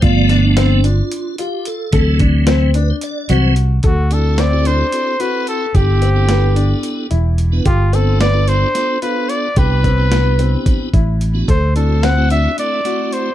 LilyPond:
<<
  \new Staff \with { instrumentName = "Trumpet" } { \time 7/8 \key d \mixolydian \tempo 4 = 110 r2. r8 | r2. r8 | fis'8 a'8 d''8 c''4 b'8 a'8 | g'2 r4. |
f'8 a'8 d''8 c''4 b'8 d''8 | b'2 r4. | c''8 a'8 fis''8 e''8 d''4 c''8 | }
  \new Staff \with { instrumentName = "Tonewheel organ" } { \time 7/8 \key d \mixolydian d''8. d'8. f'4 g'8 a'8~ | a'8 r4 b'16 c''16 d''8 c''8 r8 | r8 <c' e' fis' a'>8. <c' e' fis' a'>8. <c' e' fis' a'>8 <c' e' fis' a'>8. r16 | <b d' e' a'>8. <b d' e' a'>4.~ <b d' e' a'>16 r8. <b d' e' b'>16 |
r8 <b d' f' a'>8. <b d' f' a'>8. <b d' f' a'>8 <b d' f' a'>8. r16 | <b d' e' g'>8. <b d' e' g'>4.~ <b d' e' g'>16 r8. <b d' e' fis'>16 | r8 <a c' e' fis'>8. <a c' e' fis'>8. <a c' e' a'>8 <a c' e' fis'>8. r16 | }
  \new Staff \with { instrumentName = "Tonewheel organ" } { \clef bass \time 7/8 \key d \mixolydian <f a b>4. r2 | <e fis c'>4. r4 <e fis c'>8 r8 | r2. r8 | r2. r8 |
r2. r8 | r2. r8 | r2. r8 | }
  \new Staff \with { instrumentName = "Grand piano" } { \time 7/8 \key d \mixolydian f'8 d'8 c'8 d'4 f'4 | a'8 d'8 c'8 d'4 fis'4 | a'8 d'8 c'8 d'4 fis'4 | g'8 c'8 b8 d'4 e'4 |
g'8 c'8 b8 d'4 f'4 | g'8 c'8 b8 c'4 e'4 | a'8 d'8 c'8 d'4 fis'4 | }
  \new Staff \with { instrumentName = "Fingered electric bass" } { \clef bass \time 7/8 \key d \mixolydian g,,2 r4. | d,2 r8 c,4 | d,2 r4. | g,,2 r8 e,,4 |
g,,2 r4. | c,2 r8 a,,4 | d,2 r4. | }
  \new DrumStaff \with { instrumentName = "Drums" } \drummode { \time 7/8 <hh bd>8 <hh sn>8 <hh sn>8 hh8 hh8 hh8 hh8 | <hh bd>8 <hh bd>8 <hh sn>8 hh8 hh8 hh8 hh8 | <hh bd>8 hh8 <hh sn>8 hh8 hh8 hh8 hh8 | <hh bd>8 hh8 <hh sn>8 hh8 hh8 hh8 hh8 |
<hh bd>8 hh8 <hh sn>8 hh8 <hh sn>8 hh8 hh8 | <hh bd>8 <hh bd>8 <hh sn>8 hh8 <hh bd>8 <hh bd>8 hh8 | <hh bd>8 hh8 <hh sn>8 hh8 hh8 hh8 hh8 | }
>>